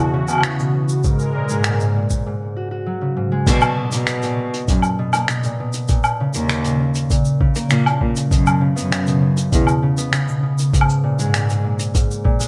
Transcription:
Already playing: B2 E3 B3 F#4
0.13 C#3
0.28 B3, low woodblock, shaker
0.31 low woodblock
0.33 low woodblock
0.35 low woodblock
0.38 low woodblock
0.41 C#3, finger snap, low woodblock, shaker
0.59 B2, shaker
0.74 C#3
0.89 shaker
1.04 G#2 G#3 A#4, kick, shaker
1.19 shaker
1.35 A#2
1.49 G#2 G#3, shaker
1.64 A#2, finger snap, shaker
1.80 G#2, shaker
1.96 A#2
2.10 kick, shaker
2.26 G#2
2.56 F#4
2.71 F#4
2.86 F#3
3.01 C#3
3.17 G#2
3.32 G#3
3.47 A#2 B2, kick, closed hi-hat, crash, shaker
3.61 low woodblock, shaker
3.77 B2
3.92 B2 A#3, closed hi-hat, shaker
4.07 B2, finger snap, closed hi-hat, shaker
4.22 A#2, closed hi-hat, shaker
4.39 B2
4.53 closed hi-hat
4.68 F#2 A#2, kick, closed hi-hat, shaker
4.82 low woodblock, shaker
4.99 B2
5.13 A#3, closed hi-hat, low woodblock, shaker
5.28 B2, finger snap, closed hi-hat, shaker
5.43 A#2, closed hi-hat, shaker
5.60 B2
5.73 closed hi-hat, shaker
5.88 A#2, kick, closed hi-hat, shaker
6.04 low woodblock, shaker
6.20 C#3
6.34 D#2 A#3, closed hi-hat, shaker
6.49 C#3, finger snap, closed hi-hat, shaker
6.64 A#2, closed hi-hat, shaker
6.80 C#3
6.95 closed hi-hat, shaker
7.10 A#2, kick, closed hi-hat, shaker
7.25 shaker
7.40 C#3, kick
7.55 A#3, closed hi-hat, shaker
7.70 A#2 C#3, finger snap, closed hi-hat, shaker
7.85 A#2, closed hi-hat, low woodblock
8.01 A#2 C#3, kick
8.16 closed hi-hat, shaker
8.31 F#2 B2, kick, closed hi-hat, shaker
8.46 low woodblock, shaker
8.61 C#3
8.76 F#2 B3, closed hi-hat, shaker
8.91 C#3, finger snap, closed hi-hat, shaker
9.07 B2, closed hi-hat, shaker
9.21 C#3
9.37 closed hi-hat, shaker
9.52 E2 B2, kick, closed hi-hat, shaker
9.67 low woodblock, shaker
9.82 C#3
9.97 B3, closed hi-hat, shaker
10.13 C#3, finger snap, closed hi-hat, shaker
10.28 B2, shaker
10.43 C#3
10.59 closed hi-hat, shaker
10.73 G#2, kick, closed hi-hat, shaker
10.81 low woodblock
10.89 shaker
11.03 A#2
11.19 G#2 G#3, closed hi-hat, shaker
11.34 A#2, finger snap, closed hi-hat, shaker
11.48 G#2, closed hi-hat, shaker
11.64 A#2
11.79 closed hi-hat, shaker
11.94 G#2, kick, closed hi-hat, shaker
12.11 shaker
12.24 A#2, kick
12.39 G#3, closed hi-hat, shaker

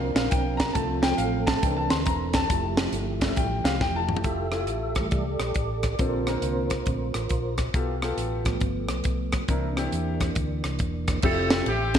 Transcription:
Already playing: C2 F3 A#3 C4 D4 A#4 F5
0.15 A#1 F5, snare, closed hi-hat
0.30 B1 G5, kick, closed hi-hat
0.57 A#5, kick, snare, closed hi-hat
0.73 C2 F3 A3 C4 A4 A5, kick, closed hi-hat
1.02 G5, snare, closed hi-hat
1.17 A1 F5, closed hi-hat
1.47 A5, kick, snare, closed hi-hat
1.62 C2 E3 A3 A#3 C4 D4 G5, kick, closed hi-hat
1.77 A5
1.90 D2 C6, snare, closed hi-hat
2.06 E1 A#5, kick, closed hi-hat
2.33 A5, kick, snare, closed hi-hat
2.50 F1 F3 A3 E4 G4, kick, closed hi-hat
2.77 snare, closed hi-hat
2.92 G1, closed hi-hat
3.20 G3 A3 E4, kick, snare, closed hi-hat
3.36 A1 G5, kick, closed hi-hat
3.64 C2 F5, snare, closed hi-hat
3.81 E1 G5, kick, snare
3.96 A5
4.09 mid tom
4.17 floor tom
4.24 F1 A3 E4 F4 G4 A4 E5, kick, closed hi-hat
4.52 A3 E4 F4 A4, cross-stick, closed hi-hat
4.67 A1, closed hi-hat
4.95 E3, kick, cross-stick, closed hi-hat
4.99 G3 A3
5.11 C2 G4 A4 D5, kick, closed hi-hat
5.40 A#1, cross-stick, closed hi-hat
5.54 A1, kick, closed hi-hat
5.83 kick, cross-stick, closed hi-hat
5.99 A#1 A#2 D3 A#3 C4 D4 F4 A4 A#4 C5, kick, closed hi-hat
6.27 A#3 C4 D4 A#4, cross-stick, closed hi-hat
6.42 C2, closed hi-hat
6.70 kick, cross-stick, closed hi-hat
6.86 A#1 D3 A3 C4, kick, closed hi-hat
7.14 A1, cross-stick, closed hi-hat
7.29 A#1, kick, closed hi-hat
7.58 kick, cross-stick, closed hi-hat
7.74 B1 B2 B3 F4 G4 A4, kick, closed hi-hat
8.02 B3 F4 G4 A4, cross-stick, closed hi-hat
8.17 A1, closed hi-hat
8.44 F3 A3 B3, kick, cross-stick, closed hi-hat
8.60 G1, kick, closed hi-hat
8.88 B1, cross-stick, closed hi-hat
9.04 B1, kick, closed hi-hat
9.32 kick, cross-stick, closed hi-hat
9.48 C2 C3 E3 A#3 C4 D4 E4 A#4, kick, closed hi-hat
9.76 C4 D4 E4 G4, cross-stick, closed hi-hat
9.92 E2, closed hi-hat
10.20 kick, cross-stick, closed hi-hat
10.35 D2, kick, closed hi-hat
10.64 C2, cross-stick, closed hi-hat
10.79 E1, kick, closed hi-hat
11.08 kick, cross-stick, closed hi-hat
11.22 F1 F3 A3 C4 E4 G4 A4 E5 G5, kick, crash
11.50 snare, ride
11.66 A1 C4 E4 G4, ride
11.94 A3 C4 E4 F4 G4, kick, snare, ride

